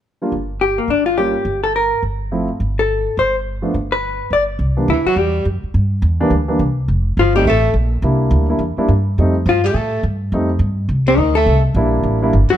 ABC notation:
X:1
M:4/4
L:1/8
Q:"Swing" 1/4=210
K:Cmix
V:1 name="Hollow-body jazz guitar"
z4 G B, D F | G3 A B2 z2 | z3 A3 c z | z3 =B3 d z |
z2 E ^F G2 z2 | z8 | z2 F G A2 z2 | z8 |
z2 F G A2 z2 | z4 z C _E A- | A z6 ^F |]
V:2 name="Grand piano"
z [G,B,DF] z6 | [G,B,_DF] z6 z | [F,A,CE] z6 z | z [F,A,=B,D] z6 |
z [E,G,B,D] z6 | z3 [E,G,B,D] z [E,G,B,D] z2 | z3 [G,A,C_E] z4 | [G,B,DE]3 [G,B,DE] z [G,B,DE] z2 |
[G,A,C_E] z6 z | [G,A,C_E] z6 z | z2 [G,B,DE]3 [G,B,DE] z2 |]
V:3 name="Tenor saxophone" clef=bass
z8 | z8 | z8 | z8 |
z2 E, ^F, G,2 z2 | z8 | z2 F, G, A,2 z2 | z8 |
z2 F, G, A,2 z2 | z4 z C, _E, A,- | A, z6 ^F, |]
V:4 name="Upright bass" clef=bass
z2 G,,,3 z G,,,2- | G,,, z G,,,3 z G,,,2- | G,,, z G,,,3 z G,,,2- | G,,, z G,,,3 z G,,,2 |
C,,2 D,, z E,,2 ^F,, z | G,,2 E,,2 D,,2 C,,2 | F,,,2 G,,,2 A,,,2 B,,,2 | C,,2 D,,2 E,, z G,,2 |
F,,2 G,,2 A,,2 G,,2 | F,,2 G,,2 C,,2 D,,2 | C,,2 B,,,2 A,,,2 G,,, z |]